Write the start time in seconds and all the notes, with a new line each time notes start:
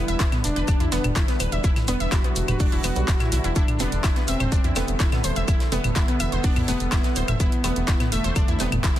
Already playing: E2 D3 G3 B3 D4 E4 B4
0.08 E1 E5 E6, closed hi-hat, maracas
0.19 E1 E4 E5, kick, snare, clap, closed hi-hat, shaker, maracas
0.32 B3 B4, snare, closed hi-hat, mid tom, claves, maracas
0.44 E1 D4, open hi-hat, maracas, shaker
0.56 E1 B4 B5, closed hi-hat, maracas
0.68 E1 D4 D5, kick, closed hi-hat, claves, shaker, maracas
0.80 E2 E4 E5, closed hi-hat, maracas
0.92 E1 D3 G3 B3 B4, snare, open hi-hat, shaker, maracas
1.04 E1, closed hi-hat, mid tom, claves, maracas
1.16 E1 E4 E5, kick, snare, clap, closed hi-hat, maracas, shaker
1.28 B3 B4, snare, closed hi-hat, maracas
1.40 D1 B4 B5, open hi-hat, claves, maracas, shaker
1.52 E1 E5 E6, closed hi-hat, maracas
1.64 E1 E4 E5, kick, closed hi-hat, shaker, maracas
1.76 snare, closed hi-hat, mid tom, claves, maracas
1.88 E1 D3 G3 B3 B4, open hi-hat, maracas, shaker
2.00 E1 E5 E6, closed hi-hat, maracas
2.12 E1 E4 F#4 E5, kick, snare, clap, closed hi-hat, claves, shaker, maracas
2.24 B3 B4, closed hi-hat, maracas
2.36 E1, open hi-hat, maracas, shaker
2.48 E1 B4 B5, closed hi-hat, mid tom, claves, maracas
2.59 E1 D4 D5, kick, closed hi-hat, open hi-hat, maracas
2.72 E1 E4 E5, closed hi-hat, maracas
2.83 E1 B3 B4, open hi-hat, claves, maracas, shaker
2.96 B1 D3 G3 B3, closed hi-hat, maracas
3.08 E1 E4 E5, kick, snare, clap, closed hi-hat, maracas, shaker
3.20 E4 E5, snare, closed hi-hat, mid tom, claves, maracas
3.32 B1 E4 E5, open hi-hat, maracas, shaker
3.44 E1 E4 E5, closed hi-hat, maracas
3.55 E1 D4 E4 A4 E5, kick, closed hi-hat, maracas, shaker
3.68 closed hi-hat, mid tom, claves, maracas
3.79 E1 C3 G3 A3 B3 B4, open hi-hat, maracas, shaker
3.92 E1, closed hi-hat, maracas
4.04 E1 E4 E5, kick, snare, clap, closed hi-hat, claves, shaker, maracas
4.16 B3 B4, snare, closed hi-hat, maracas
4.28 E1 C4 E5 E6, open hi-hat, maracas, shaker
4.40 E1 C5 C6, closed hi-hat, mid tom, claves, maracas
4.52 E1 D4 D5, kick, closed hi-hat, maracas, shaker
4.64 E2 E4 E5, closed hi-hat, maracas
4.76 E1 C3 G3 A3 B3 B4, snare, open hi-hat, claves, maracas, shaker
4.88 E1, closed hi-hat, maracas
4.99 E1 E4 E5, kick, snare, clap, closed hi-hat, maracas, shaker
5.12 B3 B4, snare, closed hi-hat, mid tom, claves, maracas
5.24 D1 C5 C6, open hi-hat, maracas, shaker
5.35 E1 E5 E6, closed hi-hat, maracas
5.48 E1 E4 E5, kick, closed hi-hat, claves, shaker, maracas
5.60 snare, closed hi-hat, maracas
5.72 E1 C3 G3 A3 B3 B4, open hi-hat, shaker, maracas
5.84 E1, closed hi-hat, mid tom, claves, maracas
5.95 E1 B3 E4 E5, kick, snare, clap, closed hi-hat, maracas, shaker
6.08 B3 B4, closed hi-hat, maracas
6.20 E1 E5 E6, open hi-hat, claves, maracas, shaker
6.32 E1 C5 C6, closed hi-hat, maracas
6.44 E1 D4 D5, kick, closed hi-hat, open hi-hat, maracas
6.56 E2 E4 E5, closed hi-hat, mid tom, claves, maracas
6.68 E1 C3 G3 A3 B3 B4, open hi-hat, shaker, maracas
6.80 E1, closed hi-hat, maracas
6.92 E1 E4 E5, kick, snare, clap, closed hi-hat, claves, shaker, maracas
7.03 B3 B4, snare, closed hi-hat, maracas
7.15 D1 C5 C6, open hi-hat, shaker, maracas
7.28 E1 E5 E6, closed hi-hat, mid tom, claves, maracas
7.40 E1 B3 E4 E5, kick, closed hi-hat, maracas, shaker
7.52 closed hi-hat, maracas
7.64 E1 C3 G3 A3 B3 B4, open hi-hat, claves, maracas, shaker
7.76 E1, closed hi-hat, maracas
7.87 E1 E4 E5, kick, snare, clap, closed hi-hat, shaker, maracas
8.00 B3 B4, snare, closed hi-hat, mid tom, claves, maracas
8.12 E1 A3 E5 E6, open hi-hat, maracas, shaker
8.24 E1 C5 C6, closed hi-hat, maracas
8.35 E1 D4 D5, kick, closed hi-hat, claves, maracas, shaker
8.48 E2 E4 E5, closed hi-hat, maracas
8.59 E1 C3 G3 A3 B3 B4, snare, open hi-hat, maracas, shaker
8.72 E1, closed hi-hat, mid tom, claves, maracas
8.83 E1 E4 E5, kick, snare, clap, closed hi-hat, maracas, shaker
8.96 B3 B4, snare, closed hi-hat, maracas